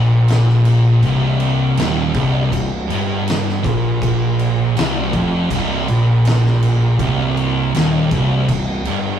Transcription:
0.00 1.00 A#1 loud
0.00 1.03 A#2 medium
0.28 snare loud
0.28 crash medium
0.49 snare soft
0.65 crash medium
1.03 1.74 C1 loud
1.03 1.77 C2 loud
1.03 kick loud
1.03 crash medium
1.40 crash medium
1.77 2.13 D#1 loud
1.77 2.14 D#2 loud
1.77 snare loud
1.77 crash medium
2.14 2.50 C1 medium
2.14 2.51 C2 loud
2.14 kick loud
2.14 crash medium
2.52 2.87 C1 medium
2.52 2.82 C2 medium
2.52 kick medium
2.52 crash medium
2.90 3.61 G1 loud
2.90 3.63 G2 loud
2.90 crash medium
3.28 snare loud
3.28 crash medium
3.49 snare soft
3.64 4.72 A#1 loud
3.64 4.75 A#2 loud
3.64 kick loud
3.64 crash medium
4.02 kick loud
4.02 crash medium
4.39 crash medium
4.75 5.11 C1 medium
4.75 5.12 C2 loud
4.75 snare loud
4.75 crash medium
5.13 5.48 F1 medium
5.13 5.50 F2 loud
5.13 kick loud
5.13 crash medium
5.50 5.86 C1 loud
5.50 5.87 C2 loud
5.50 kick loud
5.50 crash medium
5.88 6.96 A#1 loud
5.88 6.99 A#2 loud
5.88 crash medium
6.25 snare loud
6.25 crash medium
6.46 snare soft
6.63 crash medium
6.99 7.70 C1 loud
6.99 7.73 C2 loud
6.99 kick loud
6.99 crash medium
7.37 crash medium
7.74 8.09 D#1 medium
7.74 8.10 D#2 loud
7.74 snare loud
7.74 crash medium
8.11 8.46 C1 medium
8.11 8.48 C2 loud
8.11 kick loud
8.11 crash medium
8.48 8.83 C1 medium
8.48 8.79 C2 medium
8.48 kick medium
8.48 crash medium
8.85 9.19 G1 loud
8.85 9.19 G2 loud
8.85 crash medium

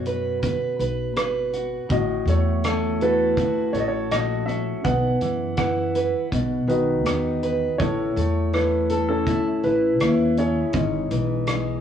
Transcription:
0.00 0.54 F#2 medium
0.00 1.85 B2 medium
0.00 1.86 C#4 medium
0.00 1.53 F#4 soft
0.05 0.41 B4 medium
0.05 closed hi-hat soft
0.42 0.78 B4 medium
0.42 kick medium
0.42 closed hi-hat medium
0.79 1.15 B1 medium
0.79 1.15 B4 medium
0.79 closed hi-hat soft
1.15 1.77 G#1 medium
1.15 1.85 B4 medium
1.15 cross-stick medium
1.15 closed hi-hat medium
1.53 3.38 F#4 medium
1.53 closed hi-hat soft
1.89 2.21 A1 medium
1.89 4.84 A2 medium
1.89 3.01 F#4 medium
1.89 2.25 D#5 medium
1.89 kick medium
1.89 closed hi-hat medium
2.25 3.48 E2 medium
2.25 4.80 A3 medium
2.25 2.66 C#5 medium
2.25 closed hi-hat soft
2.64 4.47 C#4 medium
2.64 3.02 A4 medium
2.64 cross-stick medium
2.64 closed hi-hat medium
3.01 4.44 E4 medium
3.01 4.44 F#4 medium
3.01 3.74 A4 medium
3.01 3.77 B4 medium
3.01 closed hi-hat soft
3.37 4.11 F#4 medium
3.37 kick medium
3.37 closed hi-hat medium
3.73 4.10 A1 medium
3.73 4.80 A4 medium
3.73 3.81 C#5 medium
3.73 closed hi-hat soft
3.80 3.87 D#5 medium
3.88 4.11 C#5 medium
4.10 4.71 A#1 medium
4.10 4.80 F#4 medium
4.10 4.49 D#5 medium
4.10 cross-stick medium
4.10 closed hi-hat medium
4.46 4.80 C#4 medium
4.46 4.85 E5 medium
4.46 closed hi-hat soft
4.84 5.15 B1 medium
4.84 5.21 B2 medium
4.84 5.58 B4 medium
4.84 5.56 F#5 medium
4.84 kick medium
4.84 closed hi-hat medium
5.21 6.12 F#2 medium
5.21 6.27 E3 medium
5.21 closed hi-hat medium
5.57 6.28 E4 medium
5.57 6.66 B4 medium
5.57 6.72 F#5 medium
5.57 kick medium
5.57 cross-stick medium
5.57 closed hi-hat medium
5.95 6.28 B4 medium
5.95 closed hi-hat medium
6.32 6.62 B1 medium
6.32 6.69 B2 medium
6.32 kick medium
6.32 closed hi-hat medium
6.67 7.05 B1 medium
6.67 7.74 D#3 medium
6.67 7.76 D#4 medium
6.67 7.76 F#4 medium
6.67 7.38 B4 medium
6.67 closed hi-hat soft
7.05 7.66 E2 medium
7.05 7.75 D#4 soft
7.05 cross-stick medium
7.05 closed hi-hat medium
7.43 7.75 B4 medium
7.43 closed hi-hat soft
7.78 8.10 A1 medium
7.78 10.75 A2 medium
7.78 8.53 E4 medium
7.78 9.07 A4 medium
7.78 8.55 C#5 medium
7.78 kick medium
7.78 closed hi-hat medium
8.16 9.38 E2 medium
8.16 10.70 A3 medium
8.16 closed hi-hat soft
8.53 10.38 C#4 soft
8.53 9.09 E4 medium
8.53 9.10 B4 medium
8.53 cross-stick medium
8.53 closed hi-hat medium
8.90 9.64 A4 medium
8.90 closed hi-hat soft
9.09 10.53 C#4 medium
9.09 9.65 E4 medium
9.09 9.66 A4 medium
9.27 10.01 E4 medium
9.27 kick medium
9.27 closed hi-hat medium
9.63 10.01 A1 medium
9.63 10.38 E4 medium
9.63 10.34 B4 medium
9.63 closed hi-hat soft
10.00 10.62 D#2 medium
10.00 10.71 E4 soft
10.00 cross-stick medium
10.00 closed hi-hat medium
10.37 10.71 C#4 medium
10.37 11.81 E4 medium
10.37 11.81 G#4 medium
10.37 11.08 C#5 medium
10.37 closed hi-hat soft
10.73 11.05 G#1 medium
10.73 11.81 G#2 medium
10.73 kick medium
10.73 closed hi-hat medium
11.11 11.81 B1 medium
11.11 11.81 E3 medium
11.11 closed hi-hat soft
11.47 11.81 G#3 medium
11.47 cross-stick medium
11.47 closed hi-hat medium

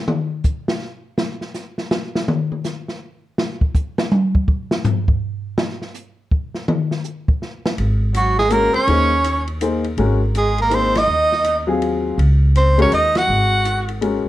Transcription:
0.08 mid tom medium
0.44 kick medium
0.44 hi-hat pedal medium
0.68 snare loud
1.18 snare loud
1.41 snare soft
1.54 snare soft
1.54 hi-hat pedal medium
1.78 snare medium
1.91 snare loud
2.15 snare medium
2.28 mid tom medium
2.52 mid tom soft
2.64 snare medium
2.64 hi-hat pedal medium
2.88 snare soft
3.38 snare loud
3.61 kick medium
3.75 kick medium
3.75 hi-hat pedal medium
3.98 snare loud
4.12 high tom medium
4.35 kick medium
4.48 kick medium
4.71 snare loud
4.84 floor tom loud
4.84 hi-hat pedal medium
5.08 kick medium
5.58 snare loud
5.82 snare soft
5.94 hi-hat pedal medium
6.31 kick medium
6.55 snare soft
6.68 mid tom loud
6.91 snare medium
7.04 hi-hat pedal medium
7.28 kick medium
7.42 snare soft
7.66 snare loud
7.78 8.71 G#1 medium
7.78 ride medium
8.14 8.37 F#3 medium
8.14 8.38 F#4 medium
8.14 hi-hat pedal medium
8.14 ride medium
8.38 8.50 G#3 medium
8.38 8.54 G#4 medium
8.38 snare medium
8.49 8.72 G#3 medium
8.49 8.72 A#3 medium
8.49 8.72 C#4 soft
8.49 8.72 F#4 medium
8.49 8.73 A#4 medium
8.49 8.75 A#4 medium
8.49 hi-hat pedal medium
8.49 ride medium
8.73 9.43 C#4 medium
8.73 9.45 C#5 medium
8.73 muted upright bass stroke soft
8.73 ride soft
8.87 9.94 D#2 medium
8.87 9.09 A#3 medium
8.87 9.09 D#4 medium
8.87 9.09 G#4 medium
8.87 9.10 C5 medium
8.87 ride medium
9.24 hi-hat pedal medium
9.24 ride medium
9.48 ride soft
9.61 9.83 A#3 medium
9.61 9.83 D#4 medium
9.61 9.83 G#4 medium
9.61 9.83 C5 medium
9.61 hi-hat pedal medium
9.61 ride medium
9.84 ride soft
9.97 11.04 G#1 medium
9.97 10.19 G#3 medium
9.97 10.20 C#4 medium
9.97 10.20 F#4 medium
9.97 10.20 A#4 medium
9.97 ride medium
10.35 10.57 G#3 medium
10.35 10.58 G#4 medium
10.35 hi-hat pedal medium
10.35 ride medium
10.58 10.75 A#3 medium
10.58 10.77 A#4 medium
10.58 ride soft
10.70 10.92 A#3 medium
10.70 10.92 D#4 soft
10.70 10.93 G#4 soft
10.70 10.93 C5 medium
10.70 hi-hat pedal medium
10.70 ride medium
10.74 10.98 C4 medium
10.74 10.99 C5 medium
10.95 11.69 D#4 medium
10.95 11.70 D#5 medium
10.95 snare medium
10.95 ride medium
11.07 12.14 D#2 medium
11.32 snare soft
11.44 hi-hat pedal soft
11.44 ride medium
11.67 12.15 F#3 medium
11.67 12.15 C4 medium
11.67 12.16 F4 medium
11.67 12.16 G#4 medium
11.82 ride soft
12.18 12.88 C#2 medium
12.18 ride medium
12.56 12.78 C4 medium
12.56 12.78 C5 medium
12.56 hi-hat pedal soft
12.56 ride medium
12.78 12.90 G#3 medium
12.78 12.91 C#4 medium
12.78 12.92 C#4 medium
12.78 12.91 F#4 medium
12.78 12.91 A#4 medium
12.78 ride soft
12.82 12.93 C#5 medium
12.91 13.26 D#2 medium
12.91 13.18 D#4 medium
12.91 13.19 D#5 medium
12.91 hi-hat pedal medium
12.91 ride medium
13.15 13.89 F#4 medium
13.15 13.90 F#5 loud
13.15 snare medium
13.15 ride medium
13.28 14.21 G#1 medium
13.65 hi-hat pedal medium
13.65 ride medium
13.88 ride soft
14.01 14.29 G#3 medium
14.01 14.29 C#4 medium
14.01 14.29 F#4 soft
14.01 14.29 A#4 medium
14.01 ride medium
14.25 muted upright bass stroke soft

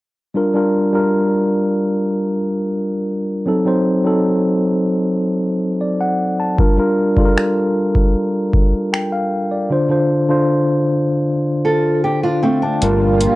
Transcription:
0.34 0.52 G3 medium
0.34 0.52 D4 medium
0.34 0.53 F4 medium
0.34 0.53 A#4 medium
0.54 0.89 G3 medium
0.54 0.89 D4 medium
0.54 0.90 F4 medium
0.54 0.90 A#4 medium
0.93 2.31 G3 medium
0.93 2.32 D4 medium
0.93 2.32 F4 medium
0.93 2.33 A#4 medium
3.46 3.64 F#3 medium
3.46 3.64 C4 medium
3.46 3.64 D#4 medium
3.46 3.65 A4 medium
3.65 4.00 F#3 medium
3.65 4.01 C4 medium
3.65 4.01 D#4 medium
3.65 4.02 C5 medium
4.04 5.43 F#3 medium
4.04 5.44 C4 medium
4.04 5.44 D#4 medium
4.04 5.44 A4 medium
5.81 5.99 D5 medium
6.01 6.37 F#5 medium
6.40 6.76 A5 medium
6.57 6.75 G3 medium
6.57 6.76 D4 medium
6.57 6.76 F4 medium
6.57 6.76 A#4 medium
6.57 kick loud
6.77 7.12 G3 medium
6.77 7.13 D4 medium
6.77 7.13 F4 medium
6.77 7.13 A#4 medium
7.16 8.55 G3 medium
7.16 8.55 D4 medium
7.16 8.56 F4 medium
7.16 7.24 A4 medium
7.16 kick medium
7.25 8.59 A#4 medium
7.38 finger snap loud
7.95 kick medium
8.53 kick medium
8.93 9.11 G5 medium
8.93 finger snap loud
9.12 9.49 F5 medium
9.51 9.88 D5 medium
9.70 9.87 D3 medium
9.70 9.88 D4 medium
9.70 9.88 F4 medium
9.70 9.89 C5 medium
9.89 10.24 D3 medium
9.89 10.24 D4 medium
9.89 10.25 F4 medium
9.89 10.25 C5 medium
10.28 11.67 D3 medium
10.28 11.67 D4 medium
10.28 11.68 F4 medium
10.28 11.68 C5 medium
11.65 12.02 F4 medium
11.65 12.02 A4 medium
12.04 12.22 G4 medium
12.23 12.42 D4 medium
12.23 12.42 F4 medium
12.23 12.42 F5 medium
12.43 12.62 A3 medium
12.43 12.61 C4 medium
12.43 12.62 G5 medium
12.62 12.99 D4 medium
12.62 13.00 A5 medium
12.81 13.26 G1 loud
12.81 13.33 G3 medium
12.81 13.35 G3 medium
12.81 13.35 A#3 medium
12.81 13.34 D4 medium
12.81 13.35 F4 medium
12.81 13.34 F4 medium
12.81 13.35 A#4 medium
12.81 closed hi-hat medium
13.21 closed hi-hat medium

